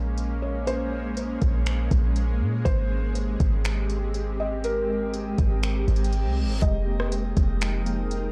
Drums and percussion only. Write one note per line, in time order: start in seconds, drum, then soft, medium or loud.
0.18 closed hi-hat medium
0.67 closed hi-hat medium
1.17 closed hi-hat medium
1.42 kick loud
1.42 closed hi-hat medium
1.66 finger snap loud
1.66 closed hi-hat medium
1.91 kick loud
1.91 closed hi-hat medium
2.16 closed hi-hat medium
2.66 kick loud
2.66 closed hi-hat medium
3.15 closed hi-hat medium
3.40 kick loud
3.40 closed hi-hat medium
3.65 finger snap loud
3.65 closed hi-hat medium
3.90 closed hi-hat medium
4.14 closed hi-hat medium
4.64 closed hi-hat medium
5.14 closed hi-hat medium
5.38 kick loud
5.38 closed hi-hat medium
5.63 finger snap loud
5.63 closed hi-hat medium
5.88 closed hi-hat soft
5.96 closed hi-hat medium
6.04 closed hi-hat medium
6.13 closed hi-hat medium
6.62 kick loud
6.62 closed hi-hat medium
7.00 cross-stick medium
7.12 closed hi-hat medium
7.37 kick loud
7.37 closed hi-hat medium
7.61 finger snap loud
7.61 closed hi-hat medium
7.86 closed hi-hat medium
8.11 closed hi-hat medium